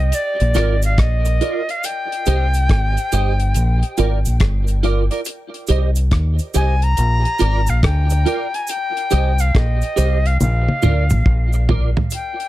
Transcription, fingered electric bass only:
0.00 0.11 C2 medium
0.41 0.55 A#1 loud
0.56 0.97 G#1 medium
0.99 1.39 A#1 medium
2.28 2.68 C2 medium
2.70 2.96 G#1 medium
3.13 3.54 G1 medium
3.56 3.82 A#1 loud
3.99 4.25 G#1 medium
4.27 4.40 A#1 medium
4.41 5.08 G1 medium
5.70 6.10 C2 medium
6.12 6.39 D#2 medium
6.56 6.96 C2 medium
6.98 7.24 A#1 loud
7.41 7.67 G#1 medium
7.69 7.83 A#1 medium
7.84 8.24 D2 medium
9.13 9.53 C2 medium
9.55 9.81 A#1 medium
9.98 10.39 C2 medium
10.41 10.67 A#1 medium
10.85 11.10 D2 medium
11.13 11.26 A#1 medium
11.26 11.94 A#1 medium

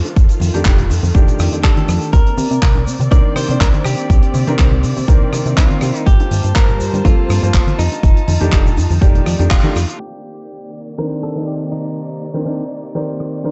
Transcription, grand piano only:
0.54 0.63 D#3 medium
0.54 0.63 A3 medium
0.54 0.63 D4 medium
0.54 0.63 G4 loud
0.65 0.78 D#3 medium
0.65 0.78 A3 medium
0.65 0.79 D4 medium
0.65 0.79 G4 medium
1.14 1.61 D#3 medium
1.14 1.61 A3 medium
1.14 1.61 D4 medium
1.14 1.61 G4 loud
1.63 2.12 D#3 medium
1.63 2.12 A3 medium
1.63 2.12 D4 medium
1.63 2.12 G4 medium
3.11 3.46 D#3 medium
3.11 3.46 C4 medium
3.11 3.46 D4 medium
3.11 3.46 A#4 loud
3.48 4.44 D#3 medium
3.48 4.44 C4 medium
3.48 4.45 D4 medium
3.48 4.45 D5 medium
4.47 4.56 D#3 medium
4.47 4.56 C4 medium
4.47 4.57 D4 medium
4.47 4.57 A#4 medium
4.59 4.72 D#3 medium
4.59 4.72 C4 medium
4.59 4.72 D4 medium
4.59 4.72 A#4 medium
5.08 5.54 D#3 medium
5.08 5.55 C4 medium
5.08 5.55 D4 medium
5.08 5.55 A#4 loud
5.57 6.05 D#3 medium
5.57 6.05 C4 medium
5.57 6.05 D4 medium
5.57 6.06 A#4 medium
7.04 7.39 F3 medium
7.04 7.39 A#3 medium
7.04 7.40 C4 medium
7.04 7.40 A4 loud
7.42 7.77 F3 medium
7.42 7.77 A#3 medium
7.42 7.78 C4 medium
7.42 7.78 C5 medium
8.40 8.49 D#3 medium
8.40 8.50 A3 medium
8.40 8.50 D4 medium
8.40 8.50 G4 loud
8.52 8.65 D#3 medium
8.52 8.65 A3 medium
8.52 8.65 D4 medium
8.52 8.66 G4 medium
9.01 9.36 D#3 medium
9.01 9.37 A3 medium
9.01 9.37 G4 loud
9.01 9.37 D5 medium
9.39 9.61 D#3 medium
9.39 9.61 A3 medium
9.39 9.61 D4 medium
9.39 9.61 G4 medium
9.64 9.75 D#3 medium
9.64 9.75 A3 medium
9.64 9.75 D4 medium
9.64 9.76 G4 loud
10.98 11.33 D#3 medium
10.98 11.33 C4 medium
10.98 11.33 D4 medium
10.98 11.33 A#4 medium
11.35 12.31 D#3 medium
11.35 12.31 C4 medium
11.35 12.32 D#4 medium
11.35 12.32 D5 medium
12.34 12.43 D#3 medium
12.34 12.43 C4 medium
12.34 12.43 D4 medium
12.34 12.43 A#4 medium
12.45 12.59 D#3 medium
12.45 12.59 C4 medium
12.45 12.59 D4 medium
12.45 12.59 A#4 medium
12.95 13.41 D#3 medium
12.95 13.42 C4 medium
12.95 13.42 A#4 medium
12.95 13.42 D5 medium
13.44 13.51 D#3 medium
13.44 13.51 C4 medium
13.44 13.51 D4 medium
13.44 13.51 A#4 medium

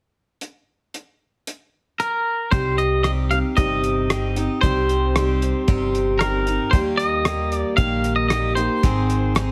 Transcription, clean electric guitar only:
2.00 2.54 A#4 medium
2.51 2.78 C5 medium
2.78 3.02 D#5 medium
3.03 3.11 D#5 medium
3.31 3.38 F5 medium
3.57 4.61 D#5 medium
4.61 6.25 C5 medium
6.19 6.74 A#4 medium
6.71 6.78 C5 medium
6.97 7.54 D#5 medium
7.54 7.76 D5 medium
7.77 8.15 F5 medium
8.16 8.27 D#5 medium
8.28 8.55 D#5 medium
8.55 9.52 C5 medium

